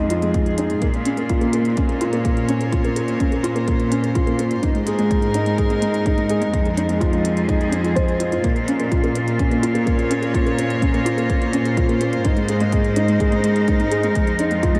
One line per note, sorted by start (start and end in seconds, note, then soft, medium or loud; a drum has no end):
0.00 0.80 F2 medium
0.00 0.82 F3 medium
0.00 0.22 G#3 medium
0.00 0.82 C4 medium
0.00 0.58 D#4 medium
0.00 0.10 F4 medium
0.00 5.24 F4 medium
0.00 2.34 G#4 medium
0.10 0.22 F4 medium
0.10 closed hi-hat medium
0.22 0.33 G#3 medium
0.22 closed hi-hat soft
0.34 0.46 G#3 medium
0.34 kick medium
0.34 closed hi-hat soft
0.46 closed hi-hat soft
0.58 0.70 D#4 medium
0.58 closed hi-hat medium
0.70 0.81 G#3 medium
0.70 closed hi-hat soft
0.81 4.61 A#2 medium
0.81 0.93 A#3 medium
0.81 5.39 A#3 medium
0.81 kick medium
0.81 closed hi-hat soft
0.94 closed hi-hat soft
1.05 1.17 C#4 medium
1.05 closed hi-hat medium
1.17 1.29 A#3 medium
1.17 closed hi-hat soft
1.29 1.41 F4 medium
1.29 kick medium
1.29 closed hi-hat soft
1.34 7.30 C5 medium
1.41 1.52 A#3 medium
1.41 closed hi-hat soft
1.53 1.65 A#3 medium
1.53 closed hi-hat medium
1.65 closed hi-hat soft
1.77 1.89 C#4 medium
1.77 4.63 C#5 medium
1.77 kick medium
1.77 closed hi-hat soft
1.89 2.00 A#3 medium
1.89 closed hi-hat soft
2.01 2.12 F4 medium
2.01 closed hi-hat medium
2.13 2.23 A#3 medium
2.13 closed hi-hat soft
2.25 2.36 A#3 medium
2.25 kick medium
2.25 closed hi-hat soft
2.37 closed hi-hat soft
2.48 2.60 C#4 medium
2.48 closed hi-hat medium
2.61 2.72 A#3 medium
2.61 closed hi-hat soft
2.72 2.84 F4 medium
2.72 kick medium
2.72 closed hi-hat soft
2.84 2.95 A#3 medium
2.84 closed hi-hat soft
2.96 3.08 A#3 medium
2.96 closed hi-hat medium
3.08 closed hi-hat soft
3.20 3.31 C#4 medium
3.20 kick medium
3.20 closed hi-hat soft
3.32 3.43 A#3 medium
3.32 closed hi-hat soft
3.44 3.55 F4 medium
3.44 closed hi-hat medium
3.55 3.66 A#3 medium
3.55 closed hi-hat soft
3.67 3.79 A#3 medium
3.67 kick medium
3.67 closed hi-hat soft
3.80 closed hi-hat soft
3.91 4.03 C#4 medium
3.91 closed hi-hat medium
4.03 4.15 A#3 medium
4.03 closed hi-hat soft
4.15 4.27 F4 medium
4.15 kick medium
4.15 closed hi-hat soft
4.27 4.37 A#3 medium
4.27 closed hi-hat soft
4.38 4.50 A#3 medium
4.38 closed hi-hat medium
4.51 closed hi-hat soft
4.63 6.51 G#2 medium
4.63 6.53 G#3 medium
4.63 4.74 D#4 medium
4.63 kick medium
4.63 closed hi-hat soft
4.75 4.86 G#3 medium
4.75 closed hi-hat soft
4.83 4.98 G#4 medium
4.83 7.29 A#4 medium
4.83 closed hi-hat medium
4.91 7.30 D#4 medium
4.99 5.09 G#3 medium
4.99 closed hi-hat soft
5.10 5.22 G#3 medium
5.10 kick medium
5.10 closed hi-hat soft
5.22 closed hi-hat soft
5.34 5.46 D#4 medium
5.34 closed hi-hat medium
5.46 5.58 G#3 medium
5.46 closed hi-hat soft
5.58 5.70 G#4 medium
5.58 kick medium
5.58 closed hi-hat soft
5.70 5.80 G#3 medium
5.70 closed hi-hat soft
5.82 5.93 G#3 medium
5.82 closed hi-hat medium
5.94 closed hi-hat soft
6.06 6.17 D#4 medium
6.06 kick medium
6.06 closed hi-hat soft
6.18 6.29 G#3 medium
6.18 closed hi-hat soft
6.29 6.41 G#4 medium
6.29 closed hi-hat medium
6.41 6.52 G#3 medium
6.41 closed hi-hat soft
6.53 8.42 F2 medium
6.53 8.44 F3 medium
6.53 6.65 G#3 medium
6.53 kick medium
6.53 closed hi-hat soft
6.65 closed hi-hat soft
6.77 6.89 D#4 medium
6.77 closed hi-hat medium
6.89 7.00 G#3 medium
6.89 closed hi-hat soft
7.00 8.44 C4 medium
7.00 7.12 F4 medium
7.00 13.01 F4 medium
7.00 9.10 G#4 medium
7.00 kick medium
7.00 closed hi-hat soft
7.12 7.23 G#3 medium
7.12 closed hi-hat soft
7.25 7.36 G#3 medium
7.25 closed hi-hat medium
7.37 closed hi-hat soft
7.48 7.60 D#4 medium
7.48 kick medium
7.48 closed hi-hat soft
7.60 7.72 G#3 medium
7.60 closed hi-hat soft
7.72 7.83 D#4 medium
7.72 closed hi-hat medium
7.83 7.95 F4 medium
7.83 closed hi-hat soft
7.95 8.07 C5 medium
7.95 kick medium
7.95 closed hi-hat soft
8.08 closed hi-hat soft
8.20 8.30 F4 medium
8.20 closed hi-hat medium
8.32 8.39 F4 medium
8.32 closed hi-hat soft
8.44 12.23 A#2 medium
8.44 8.55 A#3 medium
8.44 13.01 A#3 medium
8.44 kick medium
8.44 closed hi-hat soft
8.56 closed hi-hat soft
8.68 8.79 C#4 medium
8.68 closed hi-hat medium
8.80 8.91 A#3 medium
8.80 closed hi-hat soft
8.91 9.03 F4 medium
8.91 kick medium
8.91 closed hi-hat soft
9.03 9.14 A#3 medium
9.03 closed hi-hat soft
9.15 9.27 A#3 medium
9.15 closed hi-hat medium
9.28 closed hi-hat soft
9.39 9.50 C#4 medium
9.39 kick medium
9.39 closed hi-hat soft
9.51 9.62 A#3 medium
9.51 closed hi-hat soft
9.58 14.80 C5 medium
9.63 9.74 F4 medium
9.63 12.25 C#5 medium
9.63 closed hi-hat medium
9.74 9.84 A#3 medium
9.74 closed hi-hat soft
9.86 9.98 A#3 medium
9.86 kick medium
9.86 closed hi-hat soft
9.99 closed hi-hat soft
10.10 10.22 C#4 medium
10.10 closed hi-hat medium
10.22 10.33 A#3 medium
10.22 closed hi-hat soft
10.34 10.46 F4 medium
10.34 kick medium
10.34 closed hi-hat soft
10.46 10.56 A#3 medium
10.46 closed hi-hat soft
10.58 10.69 A#3 medium
10.58 closed hi-hat medium
10.70 closed hi-hat soft
10.82 10.93 C#4 medium
10.82 kick loud
10.82 closed hi-hat soft
10.94 11.05 A#3 medium
10.94 closed hi-hat soft
11.05 11.17 F4 medium
11.05 closed hi-hat medium
11.17 11.28 A#3 medium
11.17 closed hi-hat soft
11.29 11.41 A#3 medium
11.29 kick medium
11.29 closed hi-hat soft
11.42 closed hi-hat soft
11.53 11.65 C#4 medium
11.53 closed hi-hat medium
11.65 11.77 A#3 medium
11.65 closed hi-hat soft
11.77 11.88 F4 medium
11.77 kick medium
11.77 closed hi-hat soft
11.89 11.99 A#3 medium
11.89 closed hi-hat soft
12.01 12.12 A#3 medium
12.01 closed hi-hat medium
12.13 closed hi-hat soft
12.25 14.13 G#2 medium
12.25 14.15 G#3 medium
12.25 12.36 D#4 medium
12.25 kick loud
12.25 closed hi-hat soft
12.37 12.48 G#3 medium
12.37 closed hi-hat soft
12.48 14.80 D#4 medium
12.48 12.60 G#4 medium
12.48 closed hi-hat medium
12.60 12.71 G#3 medium
12.60 closed hi-hat soft
12.72 12.84 G#3 medium
12.72 kick medium
12.72 closed hi-hat soft
12.85 closed hi-hat soft
12.96 13.08 D#4 medium
12.96 closed hi-hat medium
13.03 14.80 A#4 medium
13.08 13.20 G#3 medium
13.08 closed hi-hat soft
13.20 13.32 G#4 medium
13.20 kick loud
13.20 closed hi-hat soft
13.32 13.42 G#3 medium
13.32 closed hi-hat soft
13.44 13.55 G#3 medium
13.44 closed hi-hat medium
13.56 closed hi-hat soft
13.68 13.79 D#4 medium
13.68 kick loud
13.68 closed hi-hat soft
13.80 13.91 G#3 medium
13.80 closed hi-hat soft
13.91 14.03 G#4 medium
13.91 closed hi-hat medium
14.03 14.13 G#3 medium
14.03 closed hi-hat soft
14.15 14.80 F2 medium
14.15 14.80 F3 medium
14.15 14.27 G#3 medium
14.15 kick medium
14.15 closed hi-hat soft
14.27 closed hi-hat soft
14.39 14.80 C4 medium
14.39 14.51 D#4 medium
14.39 14.80 F4 medium
14.39 closed hi-hat medium
14.51 14.62 G#3 medium
14.51 closed hi-hat soft
14.63 14.74 F4 medium
14.63 kick loud
14.63 closed hi-hat soft
14.75 14.80 G#3 medium
14.75 closed hi-hat soft